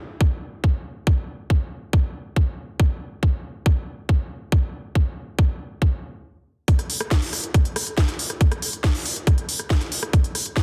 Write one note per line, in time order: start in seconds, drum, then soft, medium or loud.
0.21 kick loud
0.64 kick loud
1.07 kick loud
1.50 kick loud
1.93 kick loud
2.36 kick loud
2.80 kick loud
3.23 kick loud
3.66 kick loud
4.09 kick loud
4.52 kick loud
4.95 kick loud
5.39 kick loud
5.82 kick loud
6.68 kick loud
6.68 closed hi-hat medium
6.79 cross-stick soft
6.79 closed hi-hat medium
6.90 open hi-hat loud
7.00 cross-stick medium
7.00 closed hi-hat medium
7.11 kick loud
7.11 snare loud
7.11 closed hi-hat medium
7.22 open hi-hat medium
7.33 cross-stick soft
7.33 open hi-hat loud
7.44 closed hi-hat medium
7.54 kick loud
7.54 cross-stick soft
7.54 closed hi-hat medium
7.65 closed hi-hat medium
7.76 cross-stick medium
7.76 open hi-hat loud
7.87 closed hi-hat medium
7.98 kick loud
7.98 snare loud
7.98 closed hi-hat medium
8.08 cross-stick soft
8.08 closed hi-hat medium
8.19 open hi-hat loud
8.30 cross-stick soft
8.30 closed hi-hat medium
8.41 kick loud
8.41 closed hi-hat medium
8.52 cross-stick medium
8.52 closed hi-hat medium
8.62 open hi-hat loud
8.73 closed hi-hat medium
8.84 kick loud
8.84 cross-stick soft
8.84 snare loud
8.84 closed hi-hat medium
8.95 open hi-hat medium
9.06 open hi-hat loud
9.16 closed hi-hat medium
9.27 kick loud
9.27 cross-stick medium
9.27 closed hi-hat medium
9.38 closed hi-hat medium
9.49 open hi-hat loud
9.59 cross-stick soft
9.59 closed hi-hat medium
9.70 kick loud
9.70 snare loud
9.70 closed hi-hat medium
9.81 cross-stick soft
9.81 closed hi-hat medium
9.92 open hi-hat loud
10.03 cross-stick medium
10.03 closed hi-hat medium
10.13 kick loud
10.13 closed hi-hat medium
10.24 closed hi-hat medium
10.35 cross-stick soft
10.35 open hi-hat loud
10.46 closed hi-hat medium
10.57 kick loud
10.57 cross-stick soft
10.57 snare loud
10.57 closed hi-hat medium